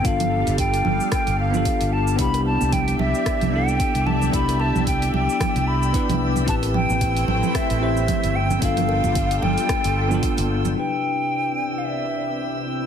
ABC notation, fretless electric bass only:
X:1
M:4/4
L:1/16
Q:"Swing 16ths" 1/4=112
K:C
V:1 name="Fretless electric bass" clef=bass
G,,,3 G,,,3 G,,, z2 G,,,3 z G,,,3 | C,,3 C,,3 C,, z2 C,,3 z C,,3 | C,,3 C,,3 C,, z2 C,,3 z C,,3 | A,,,3 A,,,3 A,,, z2 A,,,3 z G,,,3 |
G,,,3 G,,,3 G,,, z2 G,,,3 z G,,,3 | z16 |]